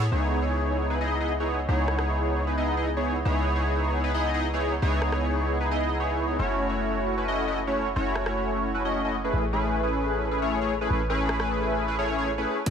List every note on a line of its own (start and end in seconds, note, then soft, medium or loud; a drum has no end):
0.12 1.67 C#2 medium
0.12 0.39 B3 medium
0.12 0.39 D#4 medium
0.12 0.39 E4 medium
0.12 0.39 G#4 medium
0.12 0.39 C#5 loud
0.42 0.88 B3 medium
0.42 0.88 D#4 medium
0.42 0.88 E4 medium
0.42 0.88 G#4 medium
0.42 0.88 C#5 medium
0.90 0.98 B3 medium
0.90 0.98 D#4 medium
0.90 0.98 E4 medium
0.90 0.98 G#4 medium
0.90 0.98 B4 medium
1.01 1.18 B3 medium
1.01 1.18 D#4 medium
1.01 1.18 E4 medium
1.01 1.18 G#4 medium
1.01 1.18 D#5 loud
1.20 1.32 B3 medium
1.20 1.32 D#4 medium
1.20 1.32 E4 medium
1.20 1.32 G#4 medium
1.20 1.32 D#5 medium
1.40 1.60 B3 medium
1.40 1.60 D#4 medium
1.40 1.60 E4 medium
1.40 1.60 G#4 medium
1.40 1.60 C#5 medium
1.68 3.24 C#2 medium
1.68 1.96 B3 medium
1.68 1.96 D#4 medium
1.68 1.96 E4 medium
1.68 1.96 G#4 medium
1.68 1.96 C#5 loud
1.88 cross-stick medium
1.99 2.45 B3 medium
1.99 2.45 D#4 medium
1.99 2.45 E4 medium
1.99 2.45 G#4 medium
1.99 2.45 C#5 medium
1.99 cross-stick medium
2.47 2.55 B3 medium
2.47 2.55 D#4 medium
2.47 2.55 E4 medium
2.47 2.55 G#4 medium
2.47 2.55 B4 medium
2.58 2.75 B3 medium
2.58 2.75 D#4 medium
2.58 2.75 E4 medium
2.58 2.75 G#4 medium
2.58 2.75 D#5 medium
2.77 2.89 B3 medium
2.77 2.89 D#4 medium
2.77 2.89 E4 medium
2.77 2.89 G#4 medium
2.77 2.89 D#5 medium
2.97 3.16 B3 medium
2.97 3.16 D#4 medium
2.97 3.16 E4 medium
2.97 3.16 G#4 medium
2.97 3.16 C#5 medium
3.25 4.80 C#2 medium
3.25 3.53 B3 medium
3.25 3.53 D#4 medium
3.25 3.53 E4 medium
3.25 3.53 G#4 medium
3.25 3.53 C#5 loud
3.55 4.02 B3 medium
3.55 4.02 D#4 medium
3.55 4.02 E4 medium
3.55 4.02 G#4 medium
3.55 4.02 C#5 medium
4.04 4.12 B3 medium
4.04 4.12 D#4 medium
4.04 4.12 E4 medium
4.04 4.12 G#4 medium
4.04 4.12 B4 medium
4.14 4.31 B3 medium
4.14 4.31 D#4 medium
4.14 4.31 E4 medium
4.14 4.31 G#4 medium
4.14 4.31 D#5 loud
4.34 4.46 B3 medium
4.34 4.46 D#4 medium
4.34 4.46 E4 medium
4.34 4.46 G#4 medium
4.34 4.46 D#5 medium
4.54 4.73 B3 medium
4.54 4.73 D#4 medium
4.54 4.73 E4 medium
4.54 4.73 G#4 medium
4.54 4.73 C#5 medium
4.82 6.37 C#2 medium
4.82 5.10 B3 medium
4.82 5.10 D#4 medium
4.82 5.10 E4 medium
4.82 5.10 G#4 medium
4.82 5.10 C#5 loud
5.02 cross-stick medium
5.12 5.58 B3 medium
5.12 5.58 D#4 medium
5.12 5.58 E4 medium
5.12 5.58 G#4 medium
5.12 5.58 C#5 medium
5.12 cross-stick medium
5.61 5.69 B3 medium
5.61 5.69 D#4 medium
5.61 5.69 E4 medium
5.61 5.69 G#4 medium
5.61 5.69 B4 medium
5.71 5.78 B3 medium
5.71 5.78 D#4 medium
5.71 5.78 E4 medium
5.71 5.78 G#4 medium
5.71 5.78 D#5 loud
5.80 5.98 B3 medium
5.80 5.98 D#4 medium
5.80 5.98 E4 medium
5.80 5.98 G#4 medium
5.80 5.98 D#5 medium
6.00 6.37 B3 medium
6.00 6.37 D#4 medium
6.00 6.37 E4 medium
6.00 6.37 G#4 medium
6.00 6.37 C#5 medium
6.39 7.94 F#1 medium
6.39 6.67 A3 medium
6.39 6.67 C#4 medium
6.39 6.67 E4 medium
6.39 6.67 F#4 medium
6.39 6.67 C#5 loud
6.69 7.15 A3 medium
6.69 7.15 C#4 medium
6.69 7.15 E4 medium
6.69 7.15 F#4 medium
6.69 7.15 C#5 medium
7.17 7.26 A3 medium
7.17 7.26 C#4 medium
7.17 7.26 E4 medium
7.17 7.26 F#4 medium
7.17 7.26 B4 medium
7.28 7.45 A3 medium
7.28 7.45 C#4 medium
7.28 7.45 E4 medium
7.28 7.45 F#4 medium
7.28 7.45 D#5 loud
7.48 7.59 A3 medium
7.48 7.59 C#4 medium
7.48 7.59 E4 medium
7.48 7.59 F#4 medium
7.48 7.59 D#5 medium
7.67 7.87 A3 medium
7.67 7.87 C#4 medium
7.67 7.87 E4 medium
7.67 7.87 F#4 medium
7.67 7.87 C#5 medium
7.96 9.31 F#1 medium
7.96 8.24 A3 medium
7.96 8.24 C#4 medium
7.96 8.24 E4 medium
7.96 8.24 F#4 medium
7.96 8.24 C#5 loud
8.16 cross-stick medium
8.26 8.72 A3 medium
8.26 8.72 C#4 medium
8.26 8.72 E4 medium
8.26 8.72 F#4 medium
8.26 8.72 C#5 medium
8.26 cross-stick medium
8.74 8.82 A3 medium
8.74 8.82 C#4 medium
8.74 8.82 E4 medium
8.74 8.82 F#4 medium
8.74 8.82 B4 medium
8.85 9.02 A3 medium
8.85 9.02 C#4 medium
8.85 9.02 E4 medium
8.85 9.02 F#4 medium
8.85 9.02 D#5 loud
9.05 9.16 A3 medium
9.05 9.16 C#4 medium
9.05 9.16 E4 medium
9.05 9.16 F#4 medium
9.05 9.16 D#5 medium
9.24 9.44 A3 medium
9.24 9.44 C#4 medium
9.24 9.44 E4 medium
9.24 9.44 G#4 medium
9.24 9.44 B4 medium
9.33 10.88 A1 medium
9.53 9.80 A3 medium
9.53 9.81 C#4 medium
9.53 9.81 E4 medium
9.53 9.81 G#4 medium
9.53 9.81 B4 loud
9.83 10.29 A3 medium
9.83 10.29 C#4 medium
9.83 10.29 E4 medium
9.83 10.29 G#4 medium
9.83 10.29 B4 medium
10.31 10.39 A3 medium
10.31 10.39 C#4 medium
10.31 10.39 E4 medium
10.31 10.39 G#4 medium
10.31 10.39 B4 medium
10.42 10.59 A3 medium
10.42 10.59 C#4 medium
10.42 10.59 E4 medium
10.42 10.59 G#4 medium
10.42 10.59 C#5 loud
10.61 10.73 A3 medium
10.61 10.73 C#4 medium
10.61 10.73 E4 medium
10.61 10.73 G#4 medium
10.61 10.73 C#5 medium
10.81 11.01 A3 medium
10.81 11.01 C#4 medium
10.81 11.01 E4 medium
10.81 11.01 G#4 medium
10.81 11.01 B4 medium
10.90 12.45 A1 medium
11.10 11.37 A3 medium
11.10 11.37 C#4 medium
11.10 11.37 E4 medium
11.10 11.37 G#4 medium
11.10 11.37 B4 loud
11.29 cross-stick medium
11.40 11.86 A3 medium
11.40 11.86 C#4 medium
11.40 11.86 E4 medium
11.40 11.86 G#4 medium
11.40 11.86 B4 medium
11.40 cross-stick medium
11.88 11.96 A3 medium
11.88 11.96 C#4 medium
11.88 11.96 E4 medium
11.88 11.96 G#4 medium
11.88 11.96 B4 medium
11.99 12.16 A3 medium
11.99 12.16 C#4 medium
11.99 12.16 E4 medium
11.99 12.16 G#4 medium
11.99 12.16 C#5 loud
12.18 12.30 A3 medium
12.18 12.30 C#4 medium
12.18 12.30 E4 medium
12.18 12.30 G#4 medium
12.18 12.30 C#5 medium
12.38 12.58 A3 medium
12.38 12.58 C#4 medium
12.38 12.58 E4 medium
12.38 12.58 G#4 medium
12.38 12.58 B4 medium
12.66 12.70 C#4 medium
12.66 12.70 E4 medium
12.66 12.70 G#4 medium
12.66 12.70 B4 medium
12.66 12.70 D#5 loud
12.66 kick medium
12.66 closed hi-hat medium